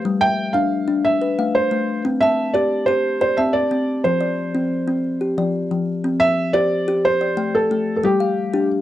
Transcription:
0.05 G3
0.21 E5 G5
0.53 D4 F5
0.88 D4
1.05 E5
1.21 B4
1.39 A3 F5
1.55 C5
1.71 A3
2.05 C4
2.21 E5 A5
2.54 G4 D5
2.86 G4 C5
3.21 C5 D5
3.37 C4 E5 A5
3.53 D5
3.71 C4
4.04 F3 C5
4.21 D5
4.55 C4
4.88 C4
5.21 G4
5.38 F3 D5
5.71 F3
6.04 C4
6.20 E5
6.53 G4 C5 D5
6.88 G4
7.05 C5
7.21 D5
7.37 A3 G5
7.55 A4
7.71 A3
7.96 A4
8.03 G3 G4
8.20 F5
8.53 D4 G4

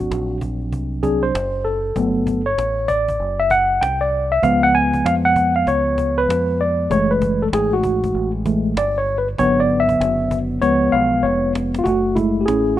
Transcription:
Already playing: F#3 C4 D4 F#4
0.11 A#1, cajon slap
0.30 cajon slap
0.41 cajon bass
0.60 cajon slap
0.72 C2, cajon bass
0.93 cajon slap
1.03 F#3 C4 D4 G#4, cajon bass
1.23 C5, cajon slap
1.34 F#1, cajon slap
1.55 cajon slap
1.65 A4, cajon slap
1.85 cajon slap
1.96 G1 F#3 A3 B3, cajon bass
2.15 cajon slap
2.27 cajon bass
2.45 C#5, cajon slap
2.58 A1, cajon slap
2.88 D5, cajon bass
3.08 cajon bass
3.20 F#1, cajon slap
3.40 E5, cajon slap
3.50 F#5, cajon bass
3.70 cajon slap
3.81 C2 G5, cajon slap
4.01 D5
4.12 cajon slap
4.32 E5, cajon slap
4.42 C#2 F3 G#3 B3 F5, cajon bass
4.62 F#5, cajon slap
4.74 G#5, cajon slap
4.93 cajon bass
5.05 F2 F5, cajon slap
5.25 F#5
5.36 cajon bass
5.55 F5, cajon slap
5.67 C#2 C#5, cajon bass
5.88 cajon slap
5.98 cajon bass
6.18 B4, cajon slap
6.28 F2, cajon slap
6.60 D5, cajon slap
6.80 cajon slap
6.90 F#1 E3 G#3 A3 C#5, cajon bass
7.09 B4, cajon slap
7.22 cajon bass
7.40 A4, cajon slap
7.53 G#1 G#4, cajon slap
7.73 F#4
7.83 cajon bass
8.04 cajon bass
8.15 A1, cajon slap
8.35 cajon slap
8.45 E3 G#3 A3, cajon bass
8.65 cajon slap
8.77 G1 D5, cajon slap
8.98 C#5
9.07 cajon slap
9.18 B4
9.27 cajon slap
9.38 G#1 D3 F#3 B3 C#5, cajon bass
9.57 D5, cajon slap
9.69 cajon slap
9.80 E5
9.89 cajon bass
10.00 F#1, cajon slap
10.19 cajon slap
10.31 cajon bass
10.50 cajon slap
10.61 C#2 F3 G#3 B3 C#5, cajon bass
10.83 cajon slap
10.92 B1 F5, cajon slap
11.12 cajon slap
11.23 F1 C#5, cajon slap
11.44 cajon slap
11.55 cajon slap
11.74 cajon slap
11.79 F4
11.84 F#1 A3 F#4, cajon bass
12.04 cajon slap
12.15 G#3 A3 E4, cajon bass
12.35 cajon slap
12.41 G4
12.46 A1 C#4 G#4, cajon slap

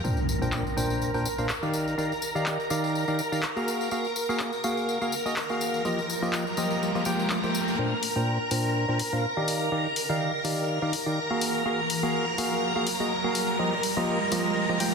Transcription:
0.04 A#2 D4 A#4 C5 G5 A#5, tambourine, impact
0.17 tambourine
0.29 tambourine
0.42 A#2 D4 A#4 C5 G5, tambourine
0.52 clap, tambourine
0.67 tambourine
0.77 A#2 D4 A#4 C5 G5, tambourine
0.90 tambourine
1.02 tambourine
1.14 A#2 D4 A#4 C5 G5, tambourine
1.25 tambourine
1.38 A#2 D4 A#4 C5 F5, tambourine
1.49 clap, tambourine
1.63 D#3 D#4 G4 D5 F5, tambourine
1.73 tambourine
1.88 tambourine
1.98 D#3 D#4 G4 D5 F5, tambourine
2.12 tambourine
2.22 tambourine
2.35 D#3 D#4 G4 D5 F5, tambourine
2.46 clap, tambourine
2.60 tambourine
2.70 D#3 D#4 G4 D5 F5, tambourine
2.84 tambourine
2.95 tambourine
3.08 D#3 D#4 G4 D5 F5, tambourine
3.19 tambourine
3.32 D#3 D#4 G4 D5 F5, tambourine
3.43 clap, tambourine
3.56 A#3 F#4 G#4 F5, tambourine
3.68 tambourine
3.81 tambourine
3.91 A#3 F#4 G#4 F5, tambourine, riser
4.05 tambourine
4.16 tambourine
4.29 A#3 F#4 G#4 F5, tambourine
4.39 clap, tambourine
4.53 tambourine
4.64 A#3 F#4 G#4 F5, tambourine
4.77 tambourine
4.89 tambourine
5.01 A#3 F#4 G#4 F5, tambourine
5.12 tambourine
5.26 A#3 F#4 G#4 D#5, tambourine
5.36 clap, tambourine
5.49 A#3 F#4 G#4 F5, tambourine
5.61 tambourine
5.74 tambourine
5.85 F3 A#3 F4 G4 D#5, tambourine
5.99 tambourine
6.10 tambourine
6.22 F3 A#3 F4 G4 D#5, tambourine
6.33 clap, tambourine
6.47 tambourine
6.57 F3 A#3 F4 G4 D#5, tambourine
6.70 tambourine
6.83 tambourine
6.95 F3 A#3 F4 G4 D#5, tambourine
7.05 F3 A#3 F4 G4 G5, tambourine
7.19 tambourine
7.30 clap, tambourine
7.43 F3 A#3 F4 G4 G5, tambourine
7.55 tambourine
7.68 tambourine
7.78 A#2 D4 A#4 C5 G5 A#5, riser
8.03 open hi-hat
8.16 A#2 D4 A#4 C5 G5
8.51 A#2 D4 A#4 C5 G5, open hi-hat
8.89 A#2 D4 A#4 C5 G5
8.99 open hi-hat
9.13 A#2 D4 A#4 C5 F5
9.37 D#3 D#4 G4 D5 F5
9.48 open hi-hat
9.72 D#3 D#4 G4 D5 F5
9.96 open hi-hat
10.10 D#3 D#4 G4 D5 F5
10.45 D#3 D#4 G4 D5 F5, open hi-hat
10.82 D#3 D#4 G4 D5 F5
10.93 open hi-hat
11.06 D#3 D#4 G4 D5 F5
11.30 A#3 F#4 G#4 F5
11.41 open hi-hat
11.66 A#3 F#4 G#4 F5
11.90 open hi-hat
12.03 A#3 F#4 G#4 F5
12.38 A#3 F#4 G#4 F5, open hi-hat
12.76 A#3 F#4 G#4 F5
12.87 open hi-hat
13.00 A#3 F#4 G#4 D#5
13.24 A#3 F#4 G#4 F5
13.35 open hi-hat
13.59 F3 A#3 F4 G4 D#5
13.83 open hi-hat
13.97 F3 A#3 F4 G4 D#5
14.32 F3 A#3 F4 G4 D#5, open hi-hat
14.69 F3 A#3 F4 G4 D#5
14.80 F3 A#3 F4 G4 G5, open hi-hat

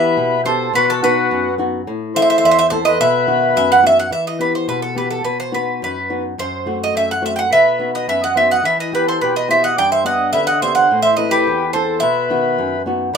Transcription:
Already playing: E3 B3 E4 G4 B4 E5
0.17 B2
0.45 B3 E4 G4 A4 C5
0.73 B2 F#4 B4
0.88 F#4 A4
1.02 B3 D#4 F#4 B4
1.31 F#2
1.58 B3 D#4 F#4
1.87 A2
2.15 C4 E4 A4 C5 E5
2.22 E5
2.30 E5
2.38 E5
2.44 E2 E5
2.51 E5
2.59 E5
2.70 C4 E4 A4 C5
2.85 B4 D#5
3.00 B2 B4 E5
3.27 D#3 B3 F#4
3.56 F#2 E5
3.72 F#5
3.83 B3 D#4 F#4
3.87 E5
4.00 F#5
4.11 E3 E5
4.27 D#5
4.39 B3 E4 G4 B4
4.55 C5
4.68 B2 B4
4.82 A4
4.95 B3 E4 G4 B4
5.10 A4
5.24 B2 B4
5.40 C5
5.52 B3 D#4 F#4 B4
5.82 F#2 B4
6.10 B3 D#4 F#4
6.38 F#2 C5
6.66 A3 C4 F#4
6.84 D#5
6.95 F#2 E5
7.11 F#5
7.22 A3 C4 F#4 E5
7.36 F#5 G5
7.51 B2 B4 E5
7.79 B3 D#4 F#4
7.93 B4 D#5
8.07 F#2 B4 E5
8.22 D#5 F#5
8.35 B3 D#4 F#4 C5 E5
8.49 D#5 F#5
8.64 E3 B4 E5
8.78 B4 D#5
8.92 B3 E4 G4 B4
9.07 A4 C5
9.21 B2 G4 B4
9.35 B4 D#5
9.48 B3 E4 G4 C5 E5
9.63 D#5 F#5
9.77 G2 D5 G5
9.91 C5 E5
10.04 B3 D4 G4 D#5 F#5
10.33 D3 B4 E5
10.47 D#5 F#5
10.61 B3 D4 G4 C5 E5
10.75 C5 F#5
10.91 A2
11.02 C5 E5
11.16 C4 E4 A4 B4 D#5
11.31 G4 B4
11.47 E2
11.73 C4 E4 A4 C5
12.00 B2 B4 E5
12.30 D#3 B3 F#4
12.58 F#2
12.86 B3 D#4 F#4
13.14 E3

